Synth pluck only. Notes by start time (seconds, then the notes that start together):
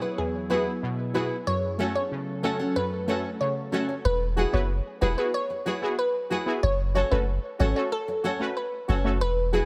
0.02 B4
0.18 G#4
0.50 B4
1.15 B4
1.47 C#5
1.95 C#5
2.44 A4
2.76 B4
3.41 C#5
4.05 B4
4.37 G#4
4.54 C#5
5.02 B4
5.18 B4
5.34 C#5
5.99 B4
6.63 C#5
6.95 C#5
7.12 B4
7.60 C#5
7.76 C#5
7.92 A4
8.57 B4
9.21 B4
9.54 G#4